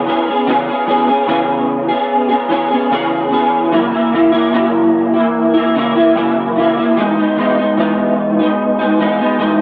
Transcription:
0.06 0.27 E3 medium
0.06 0.28 B3 medium
0.06 0.27 C#4 medium
0.06 0.25 G#4 medium
0.26 0.48 B3 soft
0.26 0.48 C#4 soft
0.26 0.47 G#4 medium
0.47 0.68 C#3 medium
0.47 0.68 E3 loud
0.47 0.69 B3 medium
0.47 0.68 C#4 medium
0.47 0.66 G#4 medium
0.67 0.87 B3 soft
0.67 0.89 C#4 medium
0.67 0.88 G#4 medium
0.87 1.08 E3 medium
0.87 1.09 B3 medium
0.87 1.08 C#4 medium
0.87 1.06 G#4 medium
1.08 1.28 B3 soft
1.08 1.28 C#4 medium
1.08 1.29 G#4 medium
1.27 1.89 C#3 medium
1.27 1.90 E3 medium
1.27 1.90 B3 medium
1.27 1.89 C#4 medium
1.27 1.87 G#4 medium
1.88 2.31 B3 soft
1.88 2.29 C#4 medium
1.88 2.27 G#4 medium
2.29 2.49 B3 soft
2.29 2.50 C#4 soft
2.29 2.50 G#4 medium
2.48 2.70 E3 medium
2.48 2.71 B3 medium
2.48 2.71 C#4 medium
2.48 2.69 G#4 medium
2.70 2.91 B3 medium
2.70 2.91 C#4 medium
2.70 2.91 G#4 medium
2.91 3.32 C#3 medium
2.91 3.29 E3 medium
2.91 3.30 B3 medium
2.91 3.32 C#4 loud
2.91 3.33 G#4 loud
3.30 3.72 E3 medium
3.30 3.72 B3 medium
3.30 3.73 C#4 medium
3.30 3.73 G#4 medium
3.71 3.92 F#2 medium
3.71 3.92 C#3 medium
3.71 3.93 E3 medium
3.71 3.93 A#3 loud
3.71 3.90 E4 medium
3.92 4.13 E3 soft
3.92 4.14 A#3 medium
3.92 4.12 E4 medium
4.12 4.33 C#3 medium
4.12 4.34 E3 medium
4.12 4.33 A#3 medium
4.12 4.31 E4 medium
4.32 4.52 E3 medium
4.32 4.53 A#3 medium
4.32 4.53 E4 medium
4.53 5.14 F#2 medium
4.53 5.14 C#3 medium
4.53 5.14 E3 medium
4.53 5.15 A#3 medium
4.53 5.13 E4 medium
5.14 5.56 E3 medium
5.14 5.55 A#3 medium
5.14 5.53 E4 medium
5.54 5.75 E3 soft
5.54 5.76 A#3 soft
5.54 5.75 E4 medium
5.75 5.95 C#3 medium
5.75 5.96 E3 medium
5.75 5.96 A#3 medium
5.75 5.94 E4 medium
5.95 6.16 E3 soft
5.95 6.16 A#3 medium
5.95 6.16 E4 medium
6.15 6.56 F#2 medium
6.15 6.55 C#3 medium
6.15 6.57 E3 medium
6.15 6.57 A#3 medium
6.15 6.57 E4 medium
6.56 6.76 C#3 medium
6.56 6.77 E3 medium
6.56 6.78 A#3 medium
6.56 6.76 E4 medium
6.77 6.96 E3 soft
6.77 6.98 A#3 medium
6.77 6.97 E4 medium
6.97 7.17 E3 medium
6.97 7.18 G#3 medium
6.97 7.17 B3 medium
6.97 7.15 D#4 medium
7.16 7.37 G#3 soft
7.16 7.38 B3 medium
7.16 7.37 D#4 medium
7.36 7.57 E3 medium
7.36 7.58 G#3 medium
7.36 7.58 B3 medium
7.36 7.56 D#4 medium
7.57 7.77 G#3 soft
7.57 7.78 B3 medium
7.57 7.78 D#4 medium
7.77 8.38 E3 medium
7.77 8.39 G#3 medium
7.77 8.40 B3 medium
7.77 8.38 D#4 medium
8.39 8.81 G#3 soft
8.39 8.80 B3 medium
8.39 8.78 D#4 medium
8.79 8.99 G#3 soft
8.79 9.00 B3 medium
8.79 8.99 D#4 medium
8.99 9.19 E3 medium
8.99 9.20 G#3 medium
8.99 9.19 B3 medium
8.99 9.18 D#4 medium
9.19 9.39 G#3 medium
9.19 9.40 B3 medium
9.19 9.40 D#4 medium
9.39 9.62 E3 medium
9.39 9.62 G#3 medium
9.39 9.62 B3 medium
9.39 9.62 D#4 loud

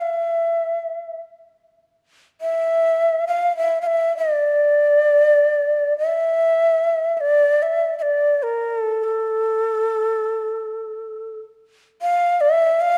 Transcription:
0.01 1.21 E5 medium
2.41 3.25 E5 medium
3.27 3.55 F5 medium
3.57 3.78 E5 medium
3.81 3.88 F5 medium
3.87 4.16 E5 medium
4.17 5.96 D5 medium
5.98 7.17 E5 medium
7.17 7.64 D5 medium
7.17 7.22 E5 soft
7.62 7.97 E5 medium
7.99 8.44 D5 medium
7.99 8.04 E5 medium
8.43 8.79 A#4 medium
8.79 9.04 A4 medium
9.04 11.41 A4 medium
12.02 12.42 F5 loud
12.41 12.82 E5 loud
12.81 12.98 F5 loud

